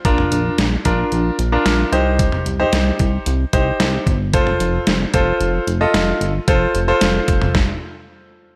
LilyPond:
<<
  \new Staff \with { instrumentName = "Grand piano" } { \time 4/4 \key f \mixolydian \tempo 4 = 112 <d' f' bes'>4 r8 <d' f' bes'>4 r16 <d' f' bes'>8. <ees' g' c''>8~ | <ees' g' c''>8 r16 <ees' g' c''>4~ <ees' g' c''>16 r8 <ees' g' c''>4 r8 | <f' a' c''>4 r8 <f' a' c''>4 r16 <f' a' ees''>4 r16 | <f' a' c''>8 r16 <f' a' c''>4~ <f' a' c''>16 r2 | }
  \new Staff \with { instrumentName = "Analog synth bass" } { \clef bass \time 4/4 \key f \mixolydian bes,,8 bes,,8 bes,,8 bes,,8 bes,,8 bes,,8 bes,,8 c,8~ | c,8 c,8 c,8 c,8 c,8 c,8 c,8 g,,8 | f,,8 f,,8 f,,8 f,,8 f,,8 f,,8 f,,8 g,,8 | f,,8 f,,8 f,,8 f,,8 r2 | }
  \new DrumStaff \with { instrumentName = "Drums" } \drummode { \time 4/4 <hh bd>16 toml16 hh8 <hh sn>8 <hh bd>8 hh8 hh8 <hh sn>8 hh8 | <hh bd>16 toml16 hh8 <hh sn>8 <hh bd>8 hh8 <hh bd>8 <hh sn>8 <hh bd>8 | <hh bd>16 toml16 hh8 <hh sn>8 <hh bd>8 hh8 hh8 <hh sn>8 hh8 | <hh bd>8 hh8 <hh sn>8 <hh bd>16 toml16 <bd sn>4 r4 | }
>>